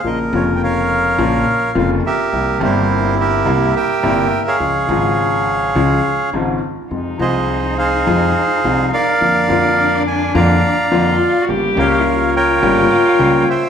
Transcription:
<<
  \new Staff \with { instrumentName = "Bandoneon" } { \time 4/4 \key bes \dorian \tempo 4 = 105 << { ees''8 des''16. g''32 f''2 f''8 e''8~ | e''8 c''4 e''4 g''4~ g''16 f''16~ | f''2. r4 | r8 ees''4 f''2 f''8~ |
f''4. aes''8 bes''4. r8 | r8 f''4 g''2 g''8 | } \\ { bes'4 <bes' des''>2 r8 <g' bes'>8~ | <g' bes'>8 <e' g'>4 <g' bes'>4 <bes' e''>4~ <bes' e''>16 <aes' des''>16~ | <aes' des''>2. r4 | r8 <aes' c''>4 <aes' c''>2 <bes' d''>8~ |
<bes' d''>4. r8 <d'' f''>2 | r8 <bes' des''>4 <bes' des''>2 <c'' e''>8 | } >> }
  \new Staff \with { instrumentName = "Cello" } { \time 4/4 \key bes \dorian r1 | r1 | r1 | ees'1 |
d'2. f'8.~ f'32 ges'32 | g'8.~ g'32 e'32 f'2. | }
  \new Staff \with { instrumentName = "Grand piano" } { \clef bass \time 4/4 \key bes \dorian <bes,, bes, des f bes f'>8 <f,, f, des f bes f'>4. <bes,, bes, des f bes f'>8 r8 <f,, f, des f bes f'>8 r8 | <c, c g bes e'>8 <g,, g, c g bes e'>4. <c, c g bes e'>8 r8 <g,, g, c g bes e'>8 r8 | <des, des f aes f'>8 <aes,, aes, des f aes f'>4. <des, des f aes f'>8 r8 <aes,, aes, des f aes f'>8 r8 | <f, c f aes f'>8 <c, c f aes f'>4. <f, c f aes f'>8 r8 <c, c f aes f'>8 r8 |
<f, d f bes f'>8 <f, d f bes f'>4. <f, d f bes f'>8 r8 <f, d f bes f'>8 r8 | <g,, g, des g bes g'>8 <des, des g bes g'>4. <g,, g, des g bes g'>8 r8 <des, des g bes g'>8 r8 | }
  \new Staff \with { instrumentName = "Upright bass" } { \clef bass \time 4/4 \key bes \dorian bes,,8 f,,4. bes,,8 r8 f,,8 r8 | c,8 g,,4. c,8 r8 g,,8 r8 | des,8 aes,,4. des,8 r8 aes,,8 r8 | f,8 c,4. f,8 r8 c,8 r8 |
f,8 f,4. f,8 r8 f,8 r8 | g,,8 des,4. g,,8 r8 des,8 r8 | }
>>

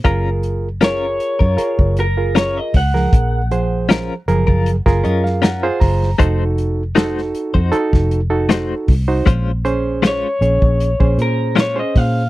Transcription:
<<
  \new Staff \with { instrumentName = "Clean electric guitar" } { \time 4/4 \key ges \lydian \tempo 4 = 78 r4 des''4. bes'8 des''16 ees''16 ges''8~ | ges''2~ ges''8 r4. | r1 | r4 des''4. bes'8 des''16 ees''16 f''8 | }
  \new Staff \with { instrumentName = "Reed electric piano" } { \time 4/4 \key ges \lydian << { r1 | r2 r8 ees''16 f''16 ges''8 bes''8 | r1 | r1 | } \\ { <f' aes' bes'>8. r16 <f' aes' bes'>8. r16 <f' aes' bes'>8 r16 <f' aes' bes'>8. r16 <f aes' bes'>16~ | <f aes' bes'>16 r16 <f aes' c''>8. r16 <f aes' bes'>8 r16 <f' aes' bes'>8. r16 <f' aes' c''>8 r16 | <ees' ges' a'>8. r16 <ees' ges' a'>8. r16 <ees' ges' a'>8 r16 <ees' ges' a'>8. r16 <ees' ges' c''>16 | r8 <des' aes' c''>8. r16 <des' aes' des''>8 r16 <des' aes' c''>8. r16 <des' aes' c''>8 r16 | } >> }
  \new Staff \with { instrumentName = "Clean electric guitar" } { \time 4/4 \key ges \lydian <des' f' bes'>16 r8. <des' f' bes'>16 r8 <f' bes'>16 r4 <des' f' bes'>16 r8. | r4 <des' f' bes'>16 r8 <f' bes'>16 r8 <des' f' bes'>16 r16 <des' f' bes'>16 r8. | <a ees' ges' c''>16 r8. <a ees' ges' c''>16 r8 <ees' ges' c''>16 r4 <a ees' ges' c''>16 r8. | <aes des' f' c''>16 r8. <aes des' f' c''>16 r4. r16 <aes des' f' c''>16 r8. | }
  \new Staff \with { instrumentName = "Fingered electric bass" } { \clef bass \time 4/4 \key ges \lydian ges,,4.~ ges,,16 ges,16 r16 ges,,4~ ges,,16 des,8 | bes,,4. ges,,16 ges,,8 ges,,16 ges,4 ges,,8 | f,,4.~ f,,16 f,16 r16 f,,4~ f,,16 c,8 | bes,,4. bes,,16 bes,,8 bes,,16 bes,4 bes,8 | }
  \new DrumStaff \with { instrumentName = "Drums" } \drummode { \time 4/4 <hh bd>8 hh8 <hh sn>8 hh16 bd16 hh16 bd16 hh8 <hh sn>8 <hho bd>16 sn16 | <hh bd>8 hh8 <hh sn>8 hh16 bd16 hh16 <bd sn>16 hh16 sn16 <hh sn>8 <hho bd>16 sn16 | <hh bd>8 hh8 <hh sn>16 sn16 hh16 bd16 hh16 <bd sn>16 hh8 <hh sn>8 <hho bd>8 | <hh bd>8 hh8 <hh sn>8 hh16 bd16 hh16 bd16 hh8 <hh sn>8 <hho bd>8 | }
>>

